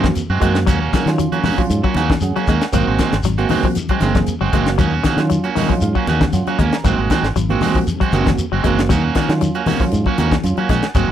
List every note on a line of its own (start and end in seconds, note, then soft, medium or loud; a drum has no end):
0.00 0.21 A#3 medium
0.00 0.21 C4 medium
0.00 0.21 F#4 medium
0.00 kick medium
0.00 closed hi-hat soft
0.04 0.21 D#3 medium
0.04 snare medium
0.04 high conga medium
0.15 closed hi-hat medium
0.15 shekere medium
0.30 0.39 F#2 medium
0.30 0.41 G#3 soft
0.30 0.41 C4 soft
0.30 0.41 F#4 medium
0.40 0.68 F#2 medium
0.40 0.58 D#3 medium
0.40 0.59 G#3 medium
0.40 0.58 G#3 medium
0.40 0.67 A#3 medium
0.40 0.67 C4 medium
0.40 0.58 C4 medium
0.40 0.67 F#4 medium
0.40 0.58 F#4 medium
0.40 kick medium
0.40 closed hi-hat medium
0.40 high conga medium
0.40 shekere soft
0.55 snare medium
0.55 closed hi-hat soft
0.67 0.87 D#2 loud
0.67 0.84 F#3 medium
0.67 0.80 A#3 medium
0.67 0.79 C#4 medium
0.67 0.79 F#4 medium
0.67 muted clean electric guitar stroke medium
0.67 kick medium
0.67 closed hi-hat medium
0.67 low conga medium
0.67 shekere medium
0.80 0.92 A#3 soft
0.80 0.92 C#4 soft
0.80 0.93 F#4 medium
0.93 1.09 D#3 medium
0.93 1.10 F#3 medium
0.93 1.09 A#3 medium
0.93 1.10 C#4 medium
0.93 1.10 F#4 medium
0.93 kick medium
0.93 snare medium
0.93 closed hi-hat medium
0.93 high conga medium
0.93 shekere soft
1.06 1.26 D#3 medium
1.06 1.38 F#3 medium
1.06 1.38 C#4 medium
1.06 1.38 F4 medium
1.06 snare medium
1.06 closed hi-hat soft
1.18 1.36 F#3 medium
1.18 closed hi-hat medium
1.18 shekere medium
1.32 1.43 A#3 soft
1.32 1.44 C#4 soft
1.32 1.45 F#4 medium
1.32 closed hi-hat soft
1.32 high conga medium
1.44 1.61 D#3 medium
1.44 1.61 A#3 medium
1.44 1.61 C#4 medium
1.44 1.61 F#4 medium
1.44 muted clean electric guitar stroke medium
1.44 open hi-hat medium
1.44 high conga medium
1.44 low conga medium
1.44 shekere soft
1.58 1.75 F3 medium
1.58 1.96 F#3 medium
1.58 1.96 C#4 medium
1.58 1.97 F4 medium
1.58 kick medium
1.70 1.80 G#2 medium
1.70 closed hi-hat medium
1.70 shekere medium
1.83 2.01 F#3 medium
1.83 1.95 A#3 soft
1.83 1.96 C#4 soft
1.83 1.96 F#4 medium
1.83 kick medium
1.94 2.15 D#2 medium
1.94 2.12 D#3 medium
1.94 2.12 A#3 medium
1.94 2.13 C#4 medium
1.94 2.13 F#4 medium
1.94 2.20 G#5 medium
1.94 closed hi-hat medium
1.94 high conga medium
1.94 shekere soft
2.10 2.27 D#3 medium
2.10 kick medium
2.10 snare medium
2.10 high conga medium
2.21 2.32 F#2 medium
2.21 2.53 F#3 medium
2.21 2.53 C#4 medium
2.21 2.53 G#4 medium
2.21 2.70 F#5 medium
2.21 closed hi-hat medium
2.21 shekere medium
2.36 2.44 F#3 medium
2.36 2.47 A#3 soft
2.36 2.48 C#4 medium
2.36 2.48 F#4 medium
2.36 muted fingered electric bass stroke soft
2.36 closed hi-hat soft
2.47 2.58 D#2 medium
2.47 2.64 D#3 medium
2.47 2.65 G#3 medium
2.47 2.64 A#3 medium
2.47 2.64 C#4 medium
2.47 2.65 F#4 medium
2.47 kick medium
2.47 closed hi-hat soft
2.47 shekere soft
2.61 snare medium
2.61 closed hi-hat soft
2.73 2.84 G#1 medium
2.73 2.87 D#3 medium
2.73 2.91 F#3 medium
2.73 3.12 A#3 medium
2.73 3.12 C4 medium
2.73 2.86 C4 medium
2.73 3.12 F#4 medium
2.73 2.86 F#4 medium
2.73 muted clean electric guitar stroke medium
2.73 kick medium
2.73 closed hi-hat medium
2.73 low conga medium
2.73 shekere medium
2.87 2.97 G#1 medium
2.87 2.98 G#3 soft
2.87 2.98 C4 soft
2.87 2.99 F#4 medium
2.99 3.15 D#3 medium
2.99 3.16 D#3 medium
2.99 3.15 G#3 medium
2.99 3.15 C4 medium
2.99 3.16 F#4 medium
2.99 kick medium
2.99 snare medium
2.99 closed hi-hat medium
2.99 high conga medium
2.99 shekere soft
3.12 3.22 G#1 medium
3.12 snare medium
3.12 closed hi-hat soft
3.23 3.44 G#1 medium
3.23 3.42 F#3 medium
3.23 snare soft
3.23 closed hi-hat medium
3.23 shekere medium
3.38 3.49 G#3 soft
3.38 3.76 A#3 medium
3.38 3.49 C4 soft
3.38 3.76 C4 medium
3.38 3.49 F#4 medium
3.38 3.76 F#4 medium
3.38 closed hi-hat soft
3.49 3.66 D#3 medium
3.49 3.60 D#3 medium
3.49 3.66 G#3 medium
3.49 3.67 C4 medium
3.49 3.66 F#4 medium
3.49 open hi-hat medium
3.49 high conga medium
3.49 low conga medium
3.49 shekere soft
3.63 3.82 F3 medium
3.63 kick medium
3.75 closed hi-hat medium
3.75 high conga medium
3.75 shekere medium
3.89 4.08 F#3 medium
3.89 4.01 G#3 soft
3.89 4.01 C4 medium
3.89 4.02 F#4 soft
3.89 kick medium
3.89 closed hi-hat soft
4.01 4.21 F#1 medium
4.01 4.18 D#3 medium
4.01 4.18 G#3 medium
4.01 4.33 A#3 medium
4.01 4.18 C4 medium
4.01 4.33 C4 medium
4.01 4.34 G#4 medium
4.01 snare soft
4.01 closed hi-hat medium
4.01 high conga medium
4.01 shekere soft
4.15 4.33 F#3 medium
4.15 kick medium
4.15 snare medium
4.15 closed hi-hat soft
4.15 high conga medium
4.26 closed hi-hat medium
4.26 shekere medium
4.41 4.50 F#1 medium
4.41 4.49 F#3 medium
4.41 4.51 G#3 soft
4.41 4.52 C4 medium
4.41 4.52 F#4 medium
4.53 4.80 F#1 medium
4.53 4.69 D#3 medium
4.53 4.69 G#3 medium
4.53 4.70 G#3 medium
4.53 4.80 A#3 medium
4.53 4.69 C4 medium
4.53 4.80 C4 medium
4.53 4.70 F#4 medium
4.53 4.80 F#4 medium
4.53 kick medium
4.53 closed hi-hat medium
4.53 high conga medium
4.53 shekere soft
4.66 snare medium
4.66 closed hi-hat soft
4.78 4.98 D#2 loud
4.78 4.93 D#3 medium
4.78 4.95 F#3 medium
4.78 4.93 A#3 medium
4.78 4.92 C#4 medium
4.78 4.92 F#4 medium
4.78 kick medium
4.78 closed hi-hat medium
4.78 low conga medium
4.78 shekere medium
4.93 5.04 C#4 soft
4.93 5.04 F#4 medium
5.03 5.21 D#3 medium
5.03 5.20 D#3 medium
5.03 5.21 A#3 medium
5.03 5.21 C#4 medium
5.03 5.21 F#4 medium
5.03 kick medium
5.03 snare medium
5.03 closed hi-hat medium
5.03 high conga medium
5.03 shekere soft
5.17 5.37 D#3 medium
5.17 5.49 F#3 medium
5.17 5.50 C#4 medium
5.17 5.49 F4 medium
5.17 snare medium
5.17 closed hi-hat soft
5.30 5.47 F#3 medium
5.30 closed hi-hat medium
5.30 shekere medium
5.44 5.57 A#3 soft
5.44 5.57 C#4 soft
5.44 5.56 F#4 soft
5.44 closed hi-hat soft
5.55 5.65 D#3 medium
5.55 5.73 D#3 medium
5.55 5.73 A#3 medium
5.55 5.73 C#4 medium
5.55 5.73 F#4 medium
5.55 5.80 D#5 medium
5.55 snare soft
5.55 open hi-hat medium
5.55 high conga medium
5.55 low conga medium
5.55 shekere soft
5.69 5.86 F3 medium
5.69 6.08 F#3 medium
5.69 6.08 C#4 medium
5.69 6.08 F4 medium
5.69 kick medium
5.81 5.92 G#2 medium
5.81 6.30 F5 medium
5.81 closed hi-hat medium
5.81 shekere medium
5.95 6.12 F#3 medium
5.95 6.07 A#3 soft
5.95 6.08 C#4 soft
5.95 6.08 F#4 medium
5.95 kick medium
6.07 6.27 D#2 medium
6.07 6.24 D#3 medium
6.07 6.24 C#4 medium
6.07 6.24 F#4 medium
6.07 muted clean electric guitar stroke medium
6.07 closed hi-hat soft
6.07 high conga medium
6.07 shekere soft
6.21 6.38 D#3 medium
6.21 kick medium
6.21 snare medium
6.21 high conga medium
6.33 6.43 F#2 medium
6.33 6.64 F#3 medium
6.33 6.64 C#4 medium
6.33 6.65 F4 medium
6.33 6.57 F#5 medium
6.33 closed hi-hat medium
6.33 shekere medium
6.47 6.55 F#3 medium
6.47 6.59 A#3 soft
6.47 6.60 C#4 soft
6.47 6.59 F#4 medium
6.47 muted fingered electric bass stroke soft
6.47 closed hi-hat soft
6.59 6.69 D#2 medium
6.59 6.76 G#3 medium
6.59 6.75 A#3 medium
6.59 6.76 C#4 medium
6.59 6.83 A#5 medium
6.59 muted clean electric guitar stroke medium
6.59 kick medium
6.59 closed hi-hat soft
6.59 high conga medium
6.59 shekere soft
6.72 snare medium
6.72 closed hi-hat soft
6.84 6.95 G#1 medium
6.84 6.99 D#3 medium
6.84 7.02 F#3 medium
6.84 6.98 G#3 medium
6.84 7.23 A#3 medium
6.84 7.23 C4 medium
6.84 6.99 C4 medium
6.84 7.24 F#4 medium
6.84 6.97 F#4 medium
6.84 kick medium
6.84 closed hi-hat medium
6.84 low conga medium
6.84 shekere medium
6.98 7.07 G#1 medium
6.98 7.10 G#3 soft
6.98 7.10 F#4 medium
7.10 7.26 D#3 medium
7.10 7.28 D#3 medium
7.10 7.27 G#3 medium
7.10 7.27 C4 medium
7.10 7.27 F#4 medium
7.10 kick medium
7.10 snare medium
7.10 closed hi-hat soft
7.10 high conga medium
7.10 shekere soft
7.23 7.32 G#1 medium
7.23 snare medium
7.23 closed hi-hat soft
7.36 7.55 G#1 medium
7.36 7.53 F#3 medium
7.36 closed hi-hat medium
7.36 shekere medium
7.49 7.61 G#3 soft
7.49 7.87 A#3 medium
7.49 7.87 C4 medium
7.49 7.62 C4 soft
7.49 7.87 F#4 medium
7.49 7.62 F#4 medium
7.49 closed hi-hat soft
7.49 high conga medium
7.61 7.78 D#3 medium
7.61 7.78 G#3 medium
7.61 7.78 C4 medium
7.61 7.78 F#4 medium
7.61 muted clean electric guitar stroke medium
7.61 snare soft
7.61 open hi-hat medium
7.61 high conga medium
7.61 low conga medium
7.61 shekere soft
7.74 7.93 F3 medium
7.74 kick medium
7.74 low conga medium
7.87 closed hi-hat medium
7.87 high conga medium
7.87 shekere medium
8.00 8.17 F#3 medium
8.00 8.13 G#3 soft
8.00 8.13 C4 soft
8.00 8.13 F#4 medium
8.00 kick medium
8.00 closed hi-hat soft
8.12 8.32 F#1 medium
8.12 8.29 D#3 medium
8.12 8.30 G#3 medium
8.12 8.44 A#3 medium
8.12 8.44 C4 medium
8.12 8.30 C4 medium
8.12 8.44 F#4 medium
8.12 8.30 F#4 medium
8.12 closed hi-hat medium
8.12 high conga medium
8.12 shekere soft
8.25 8.44 D#3 medium
8.25 kick medium
8.25 snare medium
8.25 closed hi-hat soft
8.25 high conga medium
8.38 closed hi-hat medium
8.38 shekere medium
8.52 8.61 F#1 medium
8.52 8.60 F#3 medium
8.52 8.63 G#3 soft
8.52 8.64 C4 medium
8.52 8.64 F#4 medium
8.64 8.91 F#1 medium
8.64 8.80 D#3 medium
8.64 8.81 G#3 medium
8.64 8.80 G#3 medium
8.64 8.91 A#3 medium
8.64 8.81 C4 medium
8.64 8.91 C4 medium
8.64 8.90 F#4 medium
8.64 8.81 F#4 medium
8.64 kick medium
8.64 closed hi-hat medium
8.64 high conga medium
8.64 shekere soft
8.79 snare medium
8.79 closed hi-hat soft
8.89 9.09 D#2 medium
8.89 9.04 D#3 medium
8.89 9.06 F#3 medium
8.89 9.04 A#3 medium
8.89 9.03 C#4 medium
8.89 9.03 F#4 medium
8.89 kick medium
8.89 closed hi-hat medium
8.89 low conga medium
8.89 shekere medium
9.04 9.15 A#3 soft
9.04 9.15 C#4 soft
9.04 9.16 F#4 medium
9.15 9.33 D#3 medium
9.15 9.32 D#3 medium
9.15 9.32 A#3 medium
9.15 9.32 C#4 medium
9.15 9.32 F#4 medium
9.15 kick medium
9.15 snare medium
9.15 closed hi-hat medium
9.15 high conga medium
9.15 shekere soft
9.29 9.48 D#3 medium
9.29 9.60 F#3 medium
9.29 9.60 C#4 medium
9.29 9.60 F4 medium
9.29 snare medium
9.29 closed hi-hat soft
9.41 9.58 F#3 medium
9.41 closed hi-hat medium
9.41 shekere medium
9.55 9.66 A#3 soft
9.55 9.67 C#4 soft
9.55 9.67 F#4 soft
9.55 closed hi-hat soft
9.66 9.83 D#3 medium
9.66 9.76 D#3 medium
9.66 9.83 A#3 medium
9.66 9.83 C#4 medium
9.66 9.84 F#4 medium
9.66 open hi-hat medium
9.66 high conga medium
9.66 low conga medium
9.66 shekere soft
9.80 9.98 F3 medium
9.80 10.18 F#3 medium
9.80 10.18 C#4 medium
9.80 10.18 F4 medium
9.80 kick medium
9.80 snare soft
9.92 10.03 G#2 medium
9.92 closed hi-hat medium
9.92 shekere medium
10.06 10.23 F#3 medium
10.06 10.18 A#3 soft
10.06 10.18 C#4 medium
10.06 10.18 F#4 medium
10.06 kick medium
10.18 10.38 D#2 loud
10.18 10.35 D#3 medium
10.18 10.35 A#3 medium
10.18 10.35 C#4 medium
10.18 10.35 F#4 medium
10.18 closed hi-hat medium
10.18 high conga medium
10.18 shekere soft
10.31 10.49 D#3 medium
10.31 kick medium
10.31 snare medium
10.31 high conga medium
10.43 10.54 F#2 medium
10.43 10.75 F#3 medium
10.43 10.75 C#4 medium
10.43 10.75 F4 medium
10.43 closed hi-hat medium
10.43 shekere medium
10.57 10.66 F#3 medium
10.57 10.70 A#3 soft
10.57 10.69 C#4 soft
10.57 10.69 F#4 medium
10.57 muted fingered electric bass stroke soft
10.57 closed hi-hat soft
10.69 10.80 A#1 medium
10.69 10.86 D#3 medium
10.69 10.87 G#3 medium
10.69 10.86 C#4 medium
10.69 10.86 F#4 medium
10.69 kick medium
10.69 snare soft
10.69 closed hi-hat medium
10.69 shekere soft
10.82 snare medium
10.82 closed hi-hat soft
10.95 11.05 G#1 medium
10.95 11.09 D#3 medium
10.95 11.12 F#3 medium
10.95 11.09 G#3 medium
10.95 11.12 A#3 medium
10.95 11.09 C4 medium
10.95 11.12 C4 medium
10.95 11.09 F#4 medium
10.95 11.12 F#4 medium
10.95 kick medium
10.95 closed hi-hat medium
10.95 low conga medium
10.95 shekere medium
11.08 11.12 G#1 medium